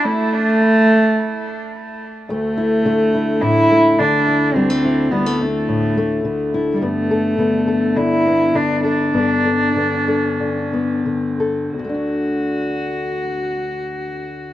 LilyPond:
<<
  \new Staff \with { instrumentName = "Cello" } { \time 4/4 \key d \major \tempo 4 = 106 a2. r4 | a2 e'4 d'4 | c'4 b8 a2 r16. g32 | a2 e'4 d'8 d'8~ |
d'2. r4 | fis'1 | }
  \new Staff \with { instrumentName = "Steel-string acoustic guitar" } { \time 4/4 \key d \major << { r1 | a8 e'8 a8 e'4 a4 e'8 | g16 a16 e'8 g16 a16 e'4 a4 e'8 | b8 a'8 b8 a'4 b4 a'8 |
b8 a'8 b8 a'4 b4 a'8 | <d a d' fis'>1 | } \\ { r1 | d,4 d4 a,4 d4 | d,4 d4 a,4 d4 | g,4 d4 d4 d4 |
g,4 d4 d4 d4 | d,1 | } >> }
>>